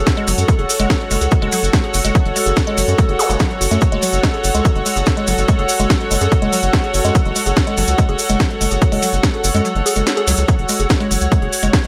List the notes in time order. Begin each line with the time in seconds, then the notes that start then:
Already playing: F#4 A4 C#5 F#5
0.07 kick, snare, closed hi-hat, cabasa
0.17 G#3, closed hi-hat
0.28 F#1 F#3, open hi-hat, cabasa
0.38 F#2, closed hi-hat, cabasa
0.48 G#3, kick, closed hi-hat, cabasa
0.59 F#1 G#4, closed hi-hat
0.69 open hi-hat, cabasa
0.80 F#1 G#3, closed hi-hat, cabasa
0.90 F#3, kick, snare, closed hi-hat, cabasa
1.00 closed hi-hat
1.11 F#1 G#3, open hi-hat, cabasa
1.21 C#2 G#4, closed hi-hat, cabasa
1.31 kick, closed hi-hat, cabasa
1.42 F#1 G#3, closed hi-hat
1.52 F#3, open hi-hat, cabasa
1.63 F#1, closed hi-hat, cabasa
1.73 G#3, kick, snare, closed hi-hat, cabasa
1.84 G#4, closed hi-hat
1.94 F#1, open hi-hat, cabasa
2.05 F#1 G#3, closed hi-hat, cabasa
2.15 F#3, kick, closed hi-hat, cabasa
2.25 F#1, closed hi-hat
2.36 G#3, open hi-hat, cabasa
2.46 F#1 G#4, closed hi-hat, cabasa
2.56 kick, snare, closed hi-hat, cabasa
2.67 G#3, closed hi-hat
2.78 F#1 F#3, open hi-hat, cabasa
2.88 F#2, closed hi-hat, cabasa
2.98 G#3, kick, closed hi-hat, cabasa
3.09 F#1 G#4, closed hi-hat
3.19 G#4, open hi-hat, zap, cabasa
3.30 F#1 G#3, closed hi-hat, cabasa
3.40 F#3, kick, snare, closed hi-hat, cabasa
3.51 closed hi-hat
3.61 F#1 F#4, open hi-hat, cabasa
3.71 F#2 A3, closed hi-hat, cabasa
3.81 kick, closed hi-hat, cabasa
3.92 F#1 G#3, closed hi-hat
4.02 F#3, open hi-hat, cabasa
4.13 F#1, closed hi-hat, cabasa
4.23 G#3, kick, snare, closed hi-hat, cabasa
4.34 G#4, closed hi-hat
4.44 F#1, open hi-hat, cabasa
4.55 C#2 G#3, closed hi-hat, cabasa
4.65 F#3, kick, closed hi-hat, cabasa
4.75 F#1, closed hi-hat
4.86 G#3, open hi-hat, cabasa
4.96 F#1 G#4, closed hi-hat, cabasa
5.06 kick, snare, closed hi-hat, cabasa
5.17 G#3, closed hi-hat
5.27 F#1 F#3, open hi-hat, cabasa
5.38 F#1, closed hi-hat, cabasa
5.48 G#3, kick, closed hi-hat, cabasa
5.59 F#1 G#4, closed hi-hat
5.69 open hi-hat, cabasa
5.80 F#1 G#3, closed hi-hat, cabasa
5.90 F#3, kick, snare, closed hi-hat, cabasa
6.00 closed hi-hat
6.11 F#1 G#3, open hi-hat, cabasa
6.21 F#2 G#4, closed hi-hat, cabasa
6.32 kick, closed hi-hat, cabasa
6.42 F#1 G#3, closed hi-hat
6.52 F#3, open hi-hat, cabasa
6.62 F#1, closed hi-hat, cabasa
6.73 G#3, kick, snare, closed hi-hat, cabasa
6.84 G#4, closed hi-hat
6.94 F#1, open hi-hat, cabasa
7.05 F#2 G#3, closed hi-hat, cabasa
7.15 kick, closed hi-hat, cabasa
7.25 F#1, closed hi-hat
7.36 G#3, open hi-hat, cabasa
7.46 F#1 G#4, closed hi-hat, cabasa
7.56 kick, snare, closed hi-hat, cabasa
7.67 G#3, closed hi-hat
7.77 F#1 F#3, open hi-hat, cabasa
7.87 C#2, closed hi-hat, cabasa
7.98 G#3, kick, closed hi-hat, cabasa
8.09 F#1 G#4, closed hi-hat
8.19 open hi-hat, cabasa
8.29 F#1 G#3, closed hi-hat, cabasa
8.40 F#3, kick, snare, closed hi-hat, cabasa
8.50 closed hi-hat
8.61 F#1 G#3, open hi-hat, cabasa
8.71 F#1 G#4, closed hi-hat, cabasa
8.82 kick, closed hi-hat, cabasa
8.92 F#1 G#3, open hi-hat
9.03 F#3, open hi-hat, cabasa
9.13 F#1, closed hi-hat, cabasa
9.23 G#3, kick, snare, closed hi-hat, cabasa
9.34 G#4, closed hi-hat
9.44 F#1, open hi-hat, cabasa
9.55 F#2 G#3, closed hi-hat, cabasa
9.65 F#3, closed hi-hat, cabasa
9.75 F#1, closed hi-hat
9.86 G#4, open hi-hat, cabasa
9.96 F#1 G#3, closed hi-hat, cabasa
10.07 snare, closed hi-hat, cabasa
10.17 G#4, closed hi-hat
10.27 C#2 F#3, open hi-hat, cabasa
10.37 C#2, closed hi-hat, cabasa
10.48 F#3 C#5, kick, closed hi-hat, cabasa
10.59 F#1, closed hi-hat
10.69 G#3, open hi-hat, cabasa
10.79 F#1 G#4, closed hi-hat, cabasa
10.90 kick, snare, closed hi-hat, cabasa
11.00 G#3, closed hi-hat
11.11 F#1 F#3, open hi-hat, cabasa
11.21 C#2, closed hi-hat, cabasa
11.32 G#3, kick, closed hi-hat, cabasa
11.42 F#1 G#4, closed hi-hat
11.53 open hi-hat, cabasa
11.63 F#1 G#3, closed hi-hat, cabasa
11.73 F#3, kick, snare, closed hi-hat, cabasa
11.84 closed hi-hat